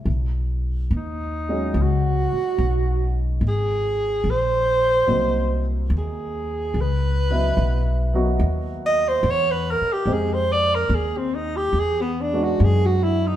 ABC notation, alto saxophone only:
X:1
M:4/4
L:1/16
Q:"Swing" 1/4=72
K:B
V:1 name="Alto saxophone"
z4 D4 F6 z2 | G4 ^B6 z2 G4 | B6 z4 d =c ^c B A =G | _A =c =d ^A _A =C _E =G ^G B, =D F G F =E ^D |]